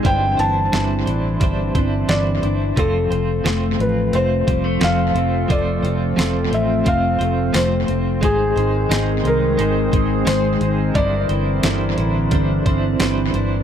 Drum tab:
HH |xxxxxxxx|xxxxxxxx|xxxxxxxx|xxxxxxxx|
TB |--------|--------|--x---x-|--x---x-|
SD |--o---o-|--o---o-|--o---o-|--o---o-|
BD |o---oo--|o----o--|o---o---|o----o--|

HH |xxxxxxxx|
TB |--x---x-|
SD |--o---o-|
BD |o---oo--|